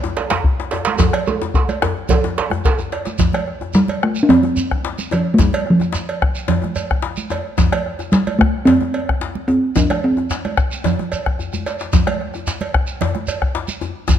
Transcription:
0.03 bombo rim, djembe slap, djembe tone
0.17 cowbell, djembe slap
0.30 bombo rim, djembe slap, high conga, djembe bass
0.44 bombo low, djembe slap
0.60 djembe slap
0.71 cowbell, djembe slap, djembe tone
0.85 djembe slap, high conga
0.99 bombo low, djembe slap, djembe tone, high conga, low conga, djembe bass, shekere
1.13 bombo rim, cowbell
1.26 djembe tone, high conga, shekere
1.42 djembe slap, djembe tone
1.54 bombo low, djembe tone, high conga, shekere
1.69 cowbell, high conga, shekere
1.82 bombo rim, djembe slap, djembe tone, djembe bass
1.97 djembe slap
2.09 bombo low, cowbell, djembe slap, high conga, djembe tone, low conga, shekere
2.24 bombo rim, djembe slap, djembe tone
2.37 cowbell, djembe slap, high conga
2.50 bombo rim, high conga, djembe bass
2.64 bombo rim, bombo low, djembe slap, high conga, shekere
2.79 bombo rim, high conga, djembe bass, shekere
2.92 bombo rim, cowbell, djembe slap
3.05 djembe slap, high conga, shekere
3.18 bombo low, djembe slap, low conga, djembe bass, shekere
3.33 bombo rim, cowbell, high conga
3.47 bombo rim, djembe slap
3.61 bombo rim, djembe tone
3.74 talking drum G3, djembe slap, shekere
3.88 cowbell, high conga
4.03 talking drum A3, bombo rim
4.15 shekere
4.23 talking drum D4
4.29 talking drum C4, cowbell, djembe slap, low conga, djembe bass
4.43 bombo rim, high conga, djembe tone
4.57 high conga, shekere
4.71 bombo rim, bombo low
4.85 djembe slap
4.99 high conga, shekere
5.11 talking drum F3, cowbell, djembe slap, djembe tone, shekere
5.34 talking drum A3
5.38 talking drum G3, bombo low, djembe slap, djembe bass, low conga, shekere
5.53 cowbell, high conga
5.66 bombo rim, djembe slap
5.70 talking drum F3
5.80 bombo rim, djembe tone, shekere
5.93 djembe slap, shekere
6.09 cowbell
6.22 bombo rim, bombo low
6.35 shekere
6.48 cowbell, djembe slap, djembe bass, low conga
6.62 bombo rim, djembe tone, high conga
6.76 cowbell, shekere
6.91 bombo rim, bombo low
7.02 djembe slap
7.16 high conga, shekere
7.30 cowbell, djembe slap, djembe tone, shekere
7.58 bombo low, djembe slap, djembe bass, low conga, shekere
7.72 bombo rim, cowbell, high conga
7.85 bombo rim, djembe slap
7.99 bombo rim, djembe tone, shekere
8.12 talking drum G3, djembe slap, shekere
8.27 cowbell, high conga
8.39 talking drum A3, bombo rim, bombo low
8.65 talking drum C4, cowbell, djembe slap, djembe bass, low conga
8.81 bombo rim, djembe tone, high conga
8.94 cowbell, high conga
9.09 bombo rim, bombo low
9.21 djembe slap
9.35 high conga
9.48 talking drum C4, djembe tone
9.76 talking drum D4, bombo low, djembe slap, djembe bass, low conga, shekere
9.90 bombo rim, cowbell, high conga
10.03 talking drum C4, bombo rim, djembe slap
10.17 bombo rim, djembe slap, djembe tone, high conga
10.30 djembe slap, high conga, shekere
10.45 bombo rim, cowbell, djembe slap, high conga
10.57 bombo rim, bombo low, high conga, shekere
10.72 high conga, shekere
10.84 bombo rim, cowbell, djembe slap, high conga, djembe bass, low conga, shekere
10.99 bombo rim, djembe tone, high conga
11.12 cowbell, shekere
11.26 bombo rim, bombo low
11.39 bombo rim, djembe bass, shekere
11.53 bombo rim, high conga, djembe bass, shekere
11.66 bombo rim, cowbell, djembe slap, shekere
11.79 djembe slap, shekere
11.93 bombo low, djembe slap, djembe bass, low conga, shekere
12.07 bombo rim, cowbell, high conga
12.21 bombo rim, djembe slap
12.34 bombo rim, djembe tone, shekere
12.47 djembe slap, shekere
12.61 cowbell, high conga
12.74 bombo rim, bombo low
12.87 shekere
13.01 cowbell, djembe slap, low conga, djembe bass
13.15 bombo rim, djembe tone, high conga
13.27 cowbell, high conga, shekere
13.42 bombo rim, bombo low
13.55 djembe slap
13.68 high conga, shekere
13.81 djembe slap, djembe tone, shekere
14.08 bombo low, djembe slap, djembe bass, low conga, shekere

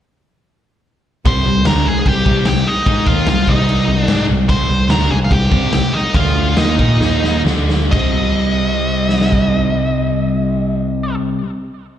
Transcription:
1.25 picked electric bass C2, overdriven electric guitar C3 G3 C4, lead electric guitar C5 C6, kick, crash
1.45 picked electric bass C2, overdriven electric guitar C3 G3
1.65 picked electric bass D2, overdriven electric guitar D3 A3 D4, lead electric guitar A#4 A#5, snare, crash
1.85 picked electric bass C2, overdriven electric guitar C3 G3, lead electric guitar G#4 G#5
2.05 picked electric bass C2, overdriven electric guitar C3 G3, lead electric guitar G4 G5, kick, crash
2.24 picked electric bass C2, overdriven electric guitar C3 G3 C4, kick
2.45 picked electric bass C2, overdriven electric guitar C3 G3, lead electric guitar G5, snare, crash
2.50 lead electric guitar G4
2.67 lead electric guitar D#4 D#5
2.86 picked electric bass G#2, overdriven electric guitar G#3 D#4 G#4, lead electric guitar D#4 D#5, kick, crash
3.07 picked electric bass D#2, overdriven electric guitar D#3 A#3 D#4, lead electric guitar F4 F5, kick
3.27 picked electric bass C2, overdriven electric guitar C3 G3, lead electric guitar F4 F5, snare, crash
3.47 picked electric bass C2, overdriven electric guitar C3 G3 C4, lead electric guitar D#4 D#5, kick
3.69 crash
3.88 picked electric bass C2, overdriven electric guitar C3 G3
4.02 lead electric guitar D5
4.08 picked electric bass G#2, overdriven electric guitar G#3 D#4 G#4, snare, crash
4.29 picked electric bass C2, overdriven electric guitar C3 G3
4.48 picked electric bass C2, overdriven electric guitar C3 G3 C4, lead electric guitar C5 C6, kick, crash
4.69 picked electric bass C2, overdriven electric guitar C3 G3
4.89 picked electric bass D2, overdriven electric guitar D3 A3 D4, lead electric guitar A#4 A#5, snare, crash
5.10 picked electric bass C2, overdriven electric guitar C3 G3, lead electric guitar G#4 G#5
5.24 lead electric guitar F5
5.31 picked electric bass C2, overdriven electric guitar C3 G3, lead electric guitar G4 G5, kick, crash
5.51 picked electric bass C2, overdriven electric guitar C3 G3 C4, kick
5.73 picked electric bass C2, overdriven electric guitar C3 G3, lead electric guitar G4 G5, snare, crash
5.93 lead electric guitar D#4 D#5
6.14 picked electric bass D2, overdriven electric guitar D3 A3 D4, lead electric guitar F4 F5, kick, crash
6.57 picked electric bass D#2, overdriven electric guitar D#3 A#3 D#4, lead electric guitar D#4 D#5, snare, crash
6.79 picked electric bass A#2, overdriven electric guitar A#3 F4 A#4, kick
7.00 picked electric bass D#2, overdriven electric guitar D#3 A#3, snare
7.04 overdriven electric guitar D#4
7.24 snare
7.45 picked electric bass D2, overdriven electric guitar D3 A3 D4, snare
7.69 snare
7.91 picked electric bass C2, overdriven electric guitar C3 G3, lead electric guitar D#5, kick, crash
7.97 overdriven electric guitar C4
9.09 snare
9.21 snare
9.32 kick

